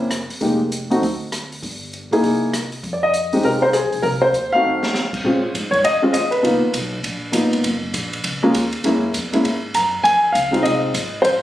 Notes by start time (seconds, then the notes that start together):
Already playing: F#1
0.11 cross-stick, closed hi-hat
0.29 muted upright bass stroke, open hi-hat
0.41 F1 G#3 A#3 D#4 G4, kick, open hi-hat
0.72 closed hi-hat
0.90 A3 C4 D#4 F#4, open hi-hat
1.02 D2, kick, open hi-hat
1.32 cross-stick, closed hi-hat
1.52 open hi-hat
1.62 G1, kick, open hi-hat
1.93 closed hi-hat
2.11 G2 A#3 D#4 E4 G#4, open hi-hat
2.22 C2, kick, open hi-hat
2.54 cross-stick, closed hi-hat
2.72 open hi-hat
2.83 F2, kick, open hi-hat
2.93 D5
3.03 D#5
3.14 closed hi-hat
3.33 G#3 C4 D#4 G4, open hi-hat
3.43 C2 A#4, kick, open hi-hat
3.62 C5
3.73 G#4, cross-stick, closed hi-hat
3.84 D#2
3.92 B1, open hi-hat
4.02 C2 A#4, kick, open hi-hat
4.22 C5
4.33 D#2, closed hi-hat
4.52 A3 C4 D#4 F#4 F5
4.63 F2
4.83 snare
4.94 snare
5.13 kick, crash
5.24 A#2 G#3 C4 C#4 F4, kick
5.54 G#2, kick, hi-hat pedal, ride
5.71 C#5, kick, ride
5.84 F2 D#5, kick, ride
6.02 G#3 C4 C#4 F4, muted upright bass stroke
6.13 D#2 D#5, kick, hi-hat pedal, ride
6.31 B4, ride
6.42 C#2 A#3 B3 D#4 F4, kick, ride
6.63 muted upright bass stroke
6.73 B1, kick, hi-hat pedal, ride
7.03 A#1, kick, ride
7.32 G#1 A#3 B3 D#4 F4, kick, hi-hat pedal, ride
7.53 ride
7.63 F#1, kick, ride
7.94 A#1, kick, hi-hat pedal, ride
8.13 ride
8.24 C#2, kick, ride
8.43 G#3 A#3 C#4 F4
8.54 D#2, kick, hi-hat pedal, ride
8.72 ride
8.84 F#2 G#3 A#3 C#4 E4, kick, ride
9.14 E2, kick, hi-hat pedal, ride
9.33 G#3 A#3 C#4 E4, ride
9.44 G#2, kick, ride
9.74 F#2 A#5, kick, hi-hat pedal, ride
10.04 F2 G#5, kick, ride
10.32 C#2 F5, kick, hi-hat pedal, ride
10.51 G#3 C4 D#4 F4, ride
10.63 C2 D#5, kick, ride
10.94 G#1, kick, hi-hat pedal, ride
11.22 A1 C5, kick, ride